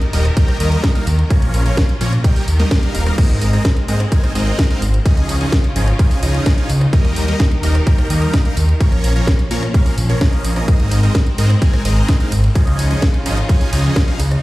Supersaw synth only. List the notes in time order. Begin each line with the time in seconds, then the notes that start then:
0.13 G3 A#3 D#4 A#4 D#5
0.37 G3 A#3 D#4 A#4 G5
0.60 G3 A#3 D#4 A#4 D#5
0.95 G3 A#3 D#4 A#4 F5
1.30 F3 A#3 C#4 A#4 C#5
1.66 F3 A#3 C#4 A#4 C#5
2.01 F3 A#3 C#4 A#4 C#5
2.24 G3 A#3 D#4 A#4 G5
2.59 G3 A#3 D#4 A#4 D#5
2.71 G3 D#4
3.06 G3 A#3 D#4 A#4 F5
3.18 G#3 C4 D#4 A#4 D#5
3.53 G#3 C4 D#4 A#4 D#5
3.88 G#3 C4 D#4 A#4 D#5
4.12 G#3 C4 D#4 A#4 G#5
4.35 G#3 C4 D#4 A#4 D#5
4.71 G#3 C4 D#4 A#4 F5
5.06 F3 C#4 D#4 G#4 D#5
5.41 F3 C#4 D#4 G#4 D#5
5.76 F3 C#4 D#4 G#4 D#5
5.99 F3 C#4 D#4 G#4 G#5
6.23 F3 C#4 D#4 G#4 D#5
6.58 F3 C#4 D#4 G#4 F5
6.93 G3 A#3 D#4 A#4 D#5
7.28 G3 A#3 D#4 A#4 D#5
7.63 G3 A#3 D#4 A#4 D#5
7.87 G3 A#3 D#4 A#4 G5
8.10 G3 A#3 D#4 A#4 D#5
8.45 G3 A#3 D#4 A#4 F5
8.81 F3 A#3 C#4 A#4 C#5
9.16 F3 A#3 C#4 A#4 C#5
9.51 F3 A#3 C#4 A#4 C#5
9.74 F3 A#3 C#4 A#4 F5
10.10 F3 A#3 C#4 A#4 C#5
10.21 F3 A#3 C#4
10.56 F3 A#3 C#4 A#4 D#5
10.68 G#3 C4 D#4 A#4 D#5
11.03 G#3 C4 D#4 A#4 D#5
11.38 G#3 C4 D#4 A#4 D#5
11.62 G#3 C4 D#4 A#4 G#5
11.85 G#3 C4 D#4 A#4 D#5
12.20 G#3 C4 D#4 A#4 F5
12.56 F3 C#4 D#4 G#4 D#5
12.91 F3 C#4 D#4 G#4 D#5
13.26 F3 C#4 D#4 G#4 D#5
13.49 F3 C#4 D#4 G#4 G#5
13.73 F3 C#4 D#4 G#4 D#5
14.08 F3 C#4 D#4 G#4 F5